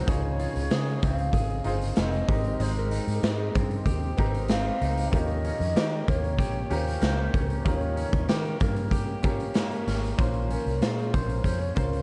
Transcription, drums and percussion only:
0.08 kick, closed hi-hat
0.40 closed hi-hat
0.56 closed hi-hat
0.71 snare, closed hi-hat
0.87 closed hi-hat
1.02 kick, closed hi-hat
1.18 closed hi-hat
1.33 kick, closed hi-hat
1.50 closed hi-hat
1.64 closed hi-hat
1.82 closed hi-hat
1.96 snare, closed hi-hat
2.13 closed hi-hat
2.29 kick, open hi-hat
2.45 closed hi-hat
2.60 closed hi-hat
2.91 closed hi-hat
3.08 closed hi-hat
3.23 snare, closed hi-hat
3.55 kick, closed hi-hat
3.71 closed hi-hat
3.86 kick, closed hi-hat
4.03 closed hi-hat
4.18 kick, closed hi-hat
4.34 closed hi-hat
4.48 snare, closed hi-hat
4.82 closed hi-hat
4.97 closed hi-hat
5.13 kick, closed hi-hat
5.28 closed hi-hat
5.45 closed hi-hat
5.61 closed hi-hat
5.76 snare, closed hi-hat
6.08 kick, closed hi-hat
6.24 closed hi-hat
6.39 kick, closed hi-hat
6.71 closed hi-hat
6.88 closed hi-hat
7.01 snare, closed hi-hat
7.34 kick, closed hi-hat
7.50 closed hi-hat
7.66 kick, closed hi-hat
7.81 closed hi-hat
7.97 closed hi-hat
8.13 kick, closed hi-hat
8.29 snare, closed hi-hat
8.45 closed hi-hat
8.60 kick, closed hi-hat
8.76 closed hi-hat
8.91 kick, closed hi-hat
9.23 kick, closed hi-hat
9.40 closed hi-hat
9.54 snare, closed hi-hat
9.72 closed hi-hat
9.88 snare, closed hi-hat
10.03 closed hi-hat
10.19 kick, closed hi-hat
10.34 closed hi-hat
10.50 closed hi-hat
10.67 closed hi-hat
10.82 snare, closed hi-hat
10.98 closed hi-hat
11.14 kick, closed hi-hat
11.29 closed hi-hat
11.44 kick, closed hi-hat
11.61 closed hi-hat
11.76 kick, closed hi-hat
11.93 closed hi-hat

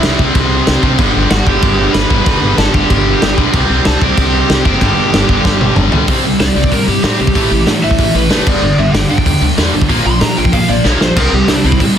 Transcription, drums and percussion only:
0.03 snare, crash
0.19 kick
0.35 kick, crash
0.67 snare, crash
0.83 kick
0.98 kick, crash
1.31 snare, crash
1.47 kick
1.62 kick, crash
1.94 snare, crash
2.10 kick
2.26 kick, crash
2.58 snare, crash
2.74 kick
2.90 kick, crash
3.22 snare, crash
3.38 kick
3.53 kick, crash
3.85 snare, crash
4.02 kick
4.18 kick, crash
4.50 snare, crash
4.65 kick
4.81 kick, crash
5.14 snare, crash
5.29 kick
5.45 kick, snare
5.61 high tom
5.76 mid tom
5.92 floor tom
6.08 kick, open hi-hat
6.40 snare, open hi-hat
6.64 kick
6.72 kick, open hi-hat
7.04 snare, open hi-hat
7.27 kick
7.35 kick, open hi-hat
7.67 snare, open hi-hat
7.91 kick
7.98 kick, open hi-hat
8.30 snare, open hi-hat
8.47 kick, crash
8.94 snare, open hi-hat
9.18 kick
9.26 kick, open hi-hat
9.58 snare, open hi-hat
9.82 kick
9.89 kick, open hi-hat
10.21 snare, open hi-hat
10.45 kick
10.53 kick, open hi-hat
10.85 snare
11.01 snare
11.16 kick, splash, crash
11.48 snare, open hi-hat
11.72 kick
11.80 kick, open hi-hat

